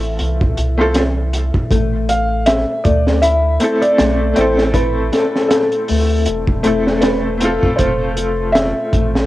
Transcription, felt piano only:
0.00 0.54 A4 medium
2.09 2.45 F5 loud
2.46 2.82 E5 loud
2.84 3.24 D5 medium
3.22 3.78 E5 loud
3.82 4.38 D5 loud
4.37 4.76 C5 medium
4.74 5.53 B4 loud
5.48 7.06 A4 medium
7.01 7.80 B4 medium
7.76 8.56 C5 medium
8.52 9.26 E5 loud

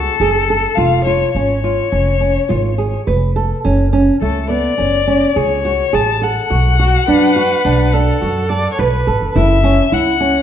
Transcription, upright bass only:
0.20 0.64 F#1 medium
0.77 1.22 F1 medium
1.35 1.79 G#1 medium
1.93 2.37 F1 medium
2.50 2.94 G#1 medium
3.08 3.51 F1 medium
3.65 4.09 F#1 medium
4.21 4.65 C#2 medium
4.80 5.23 F#1 medium
5.36 5.80 C#2 medium
5.94 6.37 A1 medium
6.51 6.94 B1 medium
7.08 7.52 F#2 medium
7.65 8.08 B1 medium
8.22 8.66 F#2 medium
8.79 9.01 B1 medium
9.08 9.20 G#1 medium
9.22 9.34 F#1 medium
9.35 9.79 F#1 medium
9.92 10.36 C#2 medium

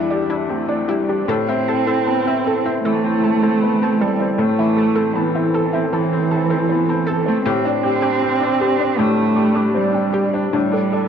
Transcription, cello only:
0.00 0.39 G3 medium
0.47 0.91 A3 medium
0.89 1.28 G3 medium
1.29 2.80 C4 loud
2.85 4.02 A3 loud
4.00 4.40 G3 medium
4.39 5.17 A3 loud
5.16 5.92 E3 medium
5.93 7.29 E3 loud
7.28 7.45 A3 medium
7.46 8.99 C4 loud
8.98 9.78 A3 loud
9.76 10.53 G3 medium
10.54 11.08 G3 medium

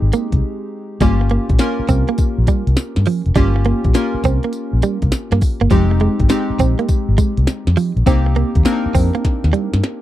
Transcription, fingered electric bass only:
0.02 0.09 G#1 medium
0.33 0.40 C2 medium
1.01 1.36 G1 loud
1.50 1.57 A#1 loud
1.79 muted fingered electric bass stroke soft
1.89 2.03 C2 medium
2.38 2.45 A#1 medium
2.67 2.74 C2 loud
2.97 3.04 G2 loud
3.26 3.33 F1 medium
3.36 3.71 G1 loud
3.85 3.92 A#1 medium
4.14 muted fingered electric bass stroke soft
4.24 4.38 C2 loud
4.73 4.80 A#1 medium
5.02 5.10 C2 medium
5.32 5.39 G2 loud
5.61 5.68 G1 medium
5.71 6.07 F1 loud
6.20 6.27 G#1 medium
6.50 muted fingered electric bass stroke medium
6.59 6.74 A#1 loud
7.09 7.16 G#1 medium
7.38 7.45 C2 loud
7.67 7.74 F2 medium
7.96 8.04 A#1 medium
8.06 8.42 C2 loud
8.56 8.63 D#2 medium
8.86 muted fingered electric bass stroke medium
8.95 9.09 F2 loud
9.44 9.51 D#2 medium
9.73 9.81 G2 medium

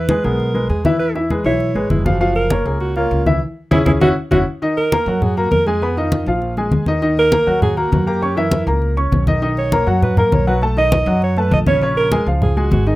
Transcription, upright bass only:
0.00 0.19 E2 medium
0.24 0.66 B1 medium
0.69 1.39 E2 medium
1.44 1.73 B1 medium
1.74 1.89 G#1 medium
1.90 2.60 F#1 medium
2.66 3.08 C#2 medium
3.11 3.39 C#2 medium
3.71 3.82 C#2 loud
3.86 3.97 C#2 loud
4.00 4.12 F#1 medium
4.31 4.42 F#1 medium
5.06 5.48 F#2 medium
5.51 6.21 F2 medium
6.26 6.69 A#1 medium
6.72 7.42 D#2 medium
7.47 7.89 D#2 medium
7.92 8.62 F#2 medium
8.67 9.09 C#2 loud
9.12 9.81 B1 medium
9.87 10.29 F#2 medium
10.32 11.01 B1 medium
11.06 11.48 F#2 loud
11.52 12.21 A#1 loud
12.26 12.68 C#2 medium
12.71 12.96 G#1 medium

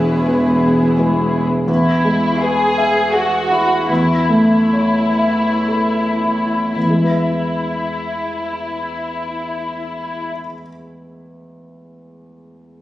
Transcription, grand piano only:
0.00 1.64 E1 soft
0.00 1.64 E2 soft
0.00 0.93 G#4 soft
0.00 0.26 B4 soft
0.00 0.93 E5 soft
0.27 0.93 G#3 soft
0.27 0.93 E4 soft
0.27 0.94 B4 soft
0.97 1.64 G#3 soft
0.97 1.65 E4 soft
0.97 1.65 B4 soft
1.67 3.85 E2 soft
2.04 2.63 G#3 soft
2.42 3.00 B4 soft
2.77 3.36 E5 soft
3.13 3.73 G#4 soft
3.50 3.89 E4 soft
3.89 6.71 E2 soft
4.29 4.99 A3 soft
4.73 5.48 C#5 soft
5.19 5.99 E5 soft
5.68 6.55 A4 soft
6.22 6.75 E4 soft
6.76 10.32 E2 soft
6.83 10.39 E3 soft
6.90 10.46 G#3 soft
6.97 10.53 E4 soft
7.04 10.60 B4 soft
7.11 10.67 E5 soft

